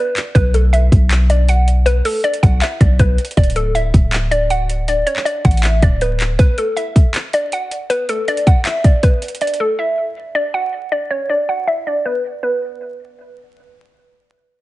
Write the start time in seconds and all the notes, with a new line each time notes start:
Already playing: B4
0.17 clap, closed hi-hat
0.35 B1 B4, kick, closed hi-hat
0.54 A4, closed hi-hat
0.73 E5, closed hi-hat
0.92 B1, kick, closed hi-hat
1.11 clap, closed hi-hat
1.30 D5, closed hi-hat
1.49 F#5, closed hi-hat
1.68 closed hi-hat
1.86 B4, closed hi-hat
2.05 A4, open hi-hat
2.24 D5, closed hi-hat
2.34 closed hi-hat
2.43 B1 F#5, kick, closed hi-hat
2.62 E5, clap, closed hi-hat
2.81 B1 D5, kick, closed hi-hat
2.99 B1 B4, kick, closed hi-hat
3.18 closed hi-hat
3.25 closed hi-hat
3.31 closed hi-hat
3.37 D1 D5, kick, closed hi-hat
3.44 closed hi-hat
3.50 closed hi-hat
3.56 A4, closed hi-hat
3.75 E5, closed hi-hat
3.94 D1, kick, closed hi-hat
4.13 clap, closed hi-hat
4.31 D5, closed hi-hat
4.50 F#5, closed hi-hat
4.70 closed hi-hat
4.88 D5, closed hi-hat
5.07 C#5, closed hi-hat
5.16 clap
5.25 D5, closed hi-hat
5.45 A1 F#5, kick, closed hi-hat
5.51 closed hi-hat
5.57 closed hi-hat
5.63 E5, clap, closed hi-hat
5.82 D1 D5, kick, closed hi-hat
6.01 B4, closed hi-hat
6.20 clap, closed hi-hat
6.39 B4, kick, closed hi-hat
6.58 A4, closed hi-hat
6.77 E5, closed hi-hat
6.96 kick, closed hi-hat
7.14 clap, closed hi-hat
7.33 D5, closed hi-hat
7.52 F#5, closed hi-hat
7.71 closed hi-hat
7.90 B4, closed hi-hat
8.09 A4, closed hi-hat
8.28 D5, closed hi-hat
8.37 closed hi-hat
8.47 F#5, kick, closed hi-hat
8.65 E5, clap, closed hi-hat
8.84 D5, kick, closed hi-hat
9.03 B4, kick, closed hi-hat
9.22 closed hi-hat
9.28 closed hi-hat
9.35 closed hi-hat
9.41 D5, closed hi-hat
9.47 closed hi-hat
9.54 closed hi-hat
9.60 A4
9.79 E5
10.35 D5
10.54 F#5
10.92 D5
11.11 C#5
11.29 D5
11.49 F#5
11.67 E5
11.87 D5
12.06 B4
12.43 B4